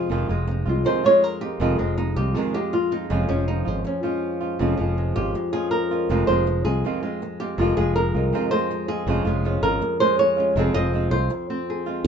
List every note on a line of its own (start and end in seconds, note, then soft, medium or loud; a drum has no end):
0.00 0.10 F2 medium
0.09 0.28 F1 medium
0.09 1.61 F2 medium
0.09 0.28 C3 medium
0.09 0.28 D#3 medium
0.09 0.29 G#3 medium
0.09 0.29 C4 medium
0.09 0.28 F4 medium
0.29 0.64 F1 medium
0.29 1.04 G#3 medium
0.29 0.46 G#3 soft
0.29 0.47 C4 soft
0.29 0.47 F4 soft
0.47 1.60 D#4 soft
0.47 muted nylon-string guitar stroke medium
0.66 0.84 C2 medium
0.66 0.85 G#3 soft
0.66 0.85 C4 soft
0.66 0.84 F4 soft
0.66 1.41 F4 soft
0.85 1.03 C3 medium
0.85 1.03 D#3 medium
0.85 1.04 G#3 medium
0.85 1.04 C4 medium
0.85 1.02 F4 medium
0.85 1.04 C5 medium
1.04 1.78 G#3 medium
1.04 1.22 G#3 soft
1.04 1.22 C4 soft
1.04 1.22 F4 soft
1.04 1.24 C#5 loud
1.22 1.42 A#4 medium
1.22 muted nylon-string guitar stroke soft
1.41 1.60 G#3 soft
1.41 1.60 C4 soft
1.41 1.59 F4 soft
1.41 1.60 G4 medium
1.60 1.77 F1 medium
1.60 3.10 F2 medium
1.60 1.78 C3 medium
1.60 1.78 D#3 medium
1.60 1.79 G#3 medium
1.60 1.78 C4 medium
1.60 1.77 F4 medium
1.60 1.80 G#4 medium
1.78 2.14 F1 medium
1.78 2.55 G#3 medium
1.78 1.97 G#3 soft
1.78 1.97 C4 soft
1.78 1.97 F4 soft
1.98 2.16 D#4 medium
1.98 muted nylon-string guitar stroke medium
2.16 2.34 C2 medium
2.16 2.35 G#3 soft
2.16 2.35 C4 soft
2.16 2.35 F4 soft
2.16 2.35 G4 medium
2.34 2.53 C3 medium
2.34 2.54 D#3 medium
2.34 2.54 G#3 medium
2.34 2.54 C4 medium
2.34 2.53 F4 medium
2.34 2.54 G#4 medium
2.54 3.28 G#3 medium
2.54 2.72 G#3 soft
2.54 2.72 C4 soft
2.54 2.72 F4 soft
2.54 2.73 G4 medium
2.73 2.92 F4 medium
2.73 muted nylon-string guitar stroke soft
2.91 3.09 G#3 soft
2.91 3.10 C4 soft
2.91 3.11 D#4 medium
2.91 3.09 F4 soft
3.10 3.28 F1 medium
3.10 4.59 F2 medium
3.10 3.28 C#3 medium
3.10 3.27 F3 medium
3.10 3.27 G#3 medium
3.10 3.28 C#4 medium
3.10 3.29 F4 medium
3.28 3.64 F1 medium
3.28 3.65 F3 soft
3.28 4.03 F3 medium
3.28 3.66 G#3 medium
3.28 3.47 C#4 medium
3.28 3.65 C#4 soft
3.28 3.64 F4 medium
3.48 3.68 D#4 medium
3.65 3.84 G#1 medium
3.65 3.83 G#3 soft
3.65 3.86 C4 medium
3.65 3.84 C#4 soft
3.65 3.84 F4 soft
3.84 4.98 C#4 medium
3.84 muted nylon-string guitar stroke medium
4.03 4.77 F3 medium
4.03 4.42 G#3 soft
4.03 4.40 C#4 soft
4.03 4.39 F4 soft
4.41 4.60 G#3 soft
4.41 4.59 C#4 soft
4.41 4.59 F4 soft
4.59 4.77 F1 medium
4.59 6.10 F2 medium
4.59 4.78 C#3 medium
4.59 4.77 F3 medium
4.59 4.78 G#3 medium
4.59 4.79 C#4 medium
4.59 4.79 F4 medium
4.77 5.13 F1 medium
4.77 5.53 F3 medium
4.77 5.15 F3 soft
4.77 5.16 G#3 soft
4.77 5.16 C#4 soft
4.77 5.14 F4 soft
4.98 5.35 G#3 soft
5.16 5.34 G#1 medium
5.16 5.34 G#3 soft
5.16 5.34 C#4 soft
5.16 5.34 F4 soft
5.16 5.52 G4 medium
5.35 6.11 G#3 soft
5.35 muted nylon-string guitar stroke medium
5.53 6.11 F3 medium
5.53 5.91 G#3 soft
5.53 5.90 C#4 soft
5.53 5.90 F4 soft
5.53 5.71 G#4 medium
5.71 6.27 A#4 medium
5.91 6.09 G#3 soft
5.91 6.09 C#4 soft
5.91 6.09 F4 medium
6.09 6.27 F1 medium
6.09 7.58 F2 medium
6.09 6.27 C3 medium
6.09 6.28 D#3 medium
6.09 6.28 G#3 medium
6.09 6.28 G#3 soft
6.09 6.28 C4 medium
6.09 7.58 C4 soft
6.09 7.39 D#4 medium
6.09 6.27 F4 medium
6.27 6.62 F1 medium
6.27 7.02 G#3 medium
6.27 6.46 G#3 soft
6.27 6.46 C4 soft
6.27 6.46 F4 soft
6.27 6.64 C5 loud
6.47 muted nylon-string guitar stroke medium
6.65 6.82 C2 medium
6.65 6.84 G#3 soft
6.65 6.84 C4 soft
6.65 6.83 F4 soft
6.65 6.84 G#4 medium
6.84 7.02 C3 medium
6.84 7.02 D#3 medium
6.84 7.03 G#3 medium
6.84 7.02 C4 medium
6.84 7.01 F4 medium
7.03 7.77 G#3 medium
7.03 7.21 G#3 soft
7.03 7.21 C4 soft
7.03 7.21 F4 soft
7.22 muted nylon-string guitar stroke medium
7.40 7.59 G#3 soft
7.40 7.59 C4 soft
7.40 7.58 F4 soft
7.40 7.77 G4 medium
7.58 7.76 F1 loud
7.58 9.07 F2 medium
7.58 7.77 C3 medium
7.58 7.77 D#3 medium
7.58 7.77 G#3 medium
7.58 7.78 C4 medium
7.58 7.77 F4 medium
7.58 7.76 F4 medium
7.77 8.12 F1 medium
7.77 8.53 G#3 medium
7.77 7.96 G#3 soft
7.77 7.96 C4 soft
7.77 7.95 F4 soft
7.77 7.95 G#4 medium
7.96 8.51 A#4 medium
7.96 muted nylon-string guitar stroke medium
8.14 8.32 C2 medium
8.14 8.33 G#3 soft
8.14 8.33 C4 soft
8.14 9.06 D#4 soft
8.14 8.32 F4 soft
8.33 8.51 C3 medium
8.33 8.51 D#3 medium
8.33 8.52 G#3 medium
8.33 8.51 C4 medium
8.33 9.06 C4 soft
8.33 8.50 F4 medium
8.51 9.27 G#3 medium
8.51 8.70 G#3 soft
8.51 8.70 C4 soft
8.51 8.69 F4 soft
8.51 8.88 C5 loud
8.70 muted nylon-string guitar stroke medium
8.88 9.07 G#3 soft
8.88 9.07 C4 soft
8.88 9.06 F4 soft
8.88 9.07 G#4 medium
9.07 9.24 F1 loud
9.07 10.56 F2 medium
9.07 9.25 C#3 medium
9.07 9.26 F3 medium
9.07 9.26 G#3 medium
9.07 9.25 C#4 medium
9.07 9.24 F4 medium
9.25 9.60 F1 medium
9.25 10.01 G#3 medium
9.25 9.43 G#3 soft
9.25 9.44 C#4 soft
9.25 9.44 F4 soft
9.44 9.62 F3 soft
9.44 9.63 G#3 soft
9.44 9.63 C#4 medium
9.44 10.54 C#4 soft
9.44 9.61 F4 medium
9.62 9.80 G#1 medium
9.62 9.81 G#3 soft
9.62 9.81 C#4 soft
9.62 9.81 F4 soft
9.62 10.00 A#4 medium
9.81 muted nylon-string guitar stroke medium
10.00 10.58 G#3 medium
10.00 10.19 C5 loud
10.19 10.56 C#5 loud
10.36 10.55 G#3 soft
10.36 10.56 C#4 soft
10.36 10.55 F4 soft
10.36 10.59 F4 medium
10.56 10.73 F1 loud
10.56 12.03 F2 medium
10.56 10.74 C3 medium
10.56 10.74 F3 medium
10.56 10.74 G#3 medium
10.56 10.74 C4 medium
10.56 10.75 C4 medium
10.56 10.73 F4 medium
10.56 12.04 F4 medium
10.56 11.69 G#4 medium
10.74 11.09 F1 medium
10.74 10.93 G#3 soft
10.74 10.93 C4 soft
10.74 11.49 C4 medium
10.74 10.92 F4 soft
10.74 11.11 D#5 loud
10.93 11.11 F3 medium
10.93 11.12 G#3 soft
10.93 11.12 C4 medium
10.93 11.11 F4 medium
11.10 11.28 C2 medium
11.10 11.29 G#3 soft
11.10 11.29 C4 soft
11.10 11.30 F4 soft
11.10 11.30 C5 loud
11.30 muted nylon-string guitar stroke medium
11.50 12.03 C4 medium
11.70 12.04 G#4 soft
11.86 12.05 G#3 soft
11.86 12.05 C4 soft
11.86 12.04 F4 soft